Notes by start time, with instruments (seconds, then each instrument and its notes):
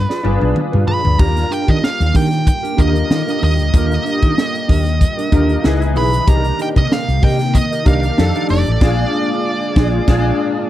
Already playing: grand piano D4 F4 G#4 B4, lead electric guitar B4
0.09 clean electric guitar F4 G#4 D5, snare
0.23 fretless electric bass G1, grand piano D4 F4 G#4 B4, muted clean electric guitar stroke, high tom
0.41 fretless electric bass B1, high tom
0.56 muted clean electric guitar stroke, mid tom
0.72 fretless electric bass G2, clean electric guitar F4 G#4 B4, mid tom
0.88 clean electric guitar F4 G#4 B4, lead electric guitar B5, floor tom
1.05 fretless electric bass D2, floor tom
1.18 fretless electric bass D#2, string machine G3 A#3 G4, grand piano D4 F4 G4 A#4, clean electric guitar D4 G4 A#4, lead electric guitar A#5, kick, crash
1.37 snare, closed hi-hat
1.51 clean electric guitar D4 G4 A#4, lead electric guitar G5, closed hi-hat
1.67 fretless electric bass D#3, clean electric guitar D4 G4 A#4, lead electric guitar D#5, kick, closed hi-hat
1.82 lead electric guitar F5, muted clean electric guitar stroke, snare
1.99 fretless electric bass D#2, muted clean electric guitar stroke, snare, closed hi-hat
2.14 fretless electric bass D#3, clean electric guitar D4 G4 A#4, lead electric guitar G5, kick, open hi-hat
2.31 muted clean electric guitar stroke, snare, closed hi-hat
2.45 lead electric guitar G5, muted clean electric guitar stroke, kick, closed hi-hat
2.63 clean electric guitar D4 G4 A#4, closed hi-hat
2.77 fretless electric bass D#2, grand piano D3 F4 G4 A#4, clean electric guitar D4 G4 A#4, lead electric guitar D#5, kick, closed hi-hat
2.95 muted clean electric guitar stroke, closed hi-hat
3.10 fretless electric bass D#3, muted clean electric guitar stroke, snare
3.27 clean electric guitar D4 G4 A#4, closed hi-hat
3.41 fretless electric bass D#2, clean electric guitar D4 G4 A#4, lead electric guitar D#5, open hi-hat
3.58 fretless electric bass D2, muted clean electric guitar stroke, closed hi-hat
3.72 fretless electric bass D#2, grand piano D3 F4 G4 A#4, clean electric guitar D4 G4 A#4, kick, closed hi-hat
3.91 closed hi-hat
4.04 clean electric guitar D4 G4 A#4, closed hi-hat
4.21 fretless electric bass D#3, clean electric guitar D4 G4 A#4, kick, closed hi-hat
4.37 muted clean electric guitar stroke, snare
4.55 muted clean electric guitar stroke, closed hi-hat
4.68 fretless electric bass D#2, clean electric guitar D4 G4 A#4, kick, open hi-hat
4.86 muted clean electric guitar stroke, snare, closed hi-hat
5.01 muted clean electric guitar stroke, kick, closed hi-hat
5.17 clean electric guitar D4 G4 A#4, closed hi-hat
5.32 fretless electric bass D#2, grand piano D3 F4 G4 A#4, clean electric guitar D4 G4 A#4, kick, closed hi-hat
5.49 muted clean electric guitar stroke, closed hi-hat
5.64 fretless electric bass C#2, string machine C#3 E3 B3, grand piano D#4 E4 G#4 B4, snare
5.81 muted clean electric guitar stroke, closed hi-hat
5.95 fretless electric bass B1, clean electric guitar E4 G#4 B4, lead electric guitar B5, open hi-hat
6.13 muted clean electric guitar stroke, closed hi-hat
6.27 fretless electric bass C2, string machine C3 D#3 A#3, grand piano D4 D#4 G4 G#4, clean electric guitar G4 A#4 D#5, lead electric guitar A#5, kick, closed hi-hat
6.35 grand piano A#4
6.44 closed hi-hat
6.59 clean electric guitar G4 A#4 D#5, lead electric guitar G5, closed hi-hat
6.76 fretless electric bass C3, clean electric guitar G4 A#4 D#5, lead electric guitar D#5, kick, closed hi-hat
6.91 lead electric guitar F5, muted clean electric guitar stroke, snare
7.07 fretless electric bass C2, muted clean electric guitar stroke, closed hi-hat
7.22 fretless electric bass C3, clean electric guitar G4 A#4 D#5, lead electric guitar G5, kick, open hi-hat
7.39 muted clean electric guitar stroke, snare, closed hi-hat
7.55 lead electric guitar D#5, muted clean electric guitar stroke, kick, closed hi-hat
7.71 clean electric guitar G4 A#4 D#5, closed hi-hat
7.85 fretless electric bass C2, grand piano D4 D#4 G4 A#4, clean electric guitar G4 A#4 D#5, lead electric guitar F5, kick, closed hi-hat
8.03 muted clean electric guitar stroke, closed hi-hat
8.17 fretless electric bass F2, string machine F3 A3, grand piano D4 D#4 G4 A4, muted clean electric guitar stroke, snare
8.35 clean electric guitar D#4 A4 D5, closed hi-hat
8.49 fretless electric bass F1, clean electric guitar D#4 A4 D5, lead electric guitar D5, open hi-hat
8.66 fretless electric bass A1, closed hi-hat
8.81 fretless electric bass A#1, string machine G#3 A#3 D4, grand piano D4 F4 G#4, clean electric guitar F4 G#4 D5, kick, snare, crash
9.76 fretless electric bass A#1, grand piano D4 F4 G#4, clean electric guitar F4 G#4 D5, kick, snare
10.07 fretless electric bass A#1, grand piano D4 F4 G#4, clean electric guitar F4 G#4 D5, kick, snare, crash